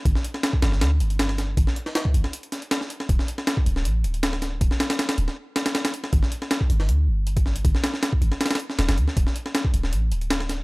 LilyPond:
<<
  \new Staff \with { instrumentName = "808-style bass" } { \clef bass \time 4/4 \key g \dorian \tempo 4 = 158 g,,16 r4 r16 g,,8 d,8 g,,4. | g,,16 r4 r16 g,,16 r2 r16 | d,,16 r4 r16 d,,8 a,,8 d,,4. | d,,16 r4 r16 d,,16 r2 r16 |
g,,16 r4 r16 g,,8 d,8 g,,4. | g,,16 r4 r16 g,,16 r4 r16 d,,16 f,,16 d,16 r16 | d,,16 r4 r16 d,,8 a,,8 d,,4. | }
  \new DrumStaff \with { instrumentName = "Drums" } \drummode { \time 4/4 <hh bd>16 sn16 hh16 sn16 <hh sn>16 bd16 <hh sn>16 sn16 <hh sn>8 hh16 hh16 <hh sn>16 sn16 <hh sn>8 | <hh bd>16 sn16 hh16 sn16 <hh sn>16 bd16 hh16 sn16 hh16 hh16 <hh sn>16 hh16 <hh sn>16 sn16 hh16 sn16 | <hh bd>16 sn16 hh16 sn16 <hh sn>16 bd16 hh16 sn16 hh8 hh16 hh16 <hh sn>16 sn16 <hh sn>8 | <hh bd>16 sn16 <hh sn>16 <hh sn>16 <hh sn>16 <hh sn>16 hh16 sn16 r8 <hh sn>16 <hh sn>16 <hh sn>16 <hh sn>16 hh16 sn16 |
<hh bd>16 sn16 hh16 sn16 <hh sn>16 bd16 hh16 sn16 hh4 hh16 <hh bd>16 sn16 hh16 | <hh bd>16 sn16 <hh sn>16 sn16 <hh sn>16 bd16 hh16 sn16 <hh sn>32 <hh sn>32 <hh sn>32 <hh sn>32 hh16 sn16 <hh sn>16 <hh sn>16 hh16 sn16 | <hh bd>16 sn16 hh16 sn16 <hh sn>16 bd16 hh16 sn16 hh8 hh16 hh16 <hh sn>16 sn16 <hh sn>8 | }
>>